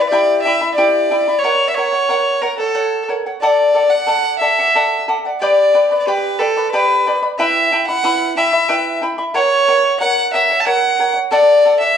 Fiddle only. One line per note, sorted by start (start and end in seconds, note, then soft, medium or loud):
0.01 0.09 B4 medium
0.07 0.41 D5 loud
0.42 0.74 E5 medium
0.74 1.40 D5 medium
1.39 1.67 C#5 loud
1.69 1.76 E5 medium
1.74 2.43 C#5 medium
2.42 2.58 A#4 medium
2.58 3.05 A4 medium
3.41 3.92 D5 medium
3.90 4.38 F#5 loud
4.39 5.02 E5 medium
5.41 5.95 D5 medium
5.99 6.07 D5 medium
6.06 6.41 B4 medium
6.39 6.71 A4 medium
6.72 7.18 B4 medium
7.39 7.84 E5 medium
7.87 8.33 F#5 loud
8.37 8.99 E5 loud
9.35 9.97 C#5 loud
10.00 10.31 F#5 loud
10.33 10.62 E5 medium
10.60 10.66 A5 medium
10.65 11.15 F#5 loud
11.32 11.78 D5 loud
11.80 11.97 E5 loud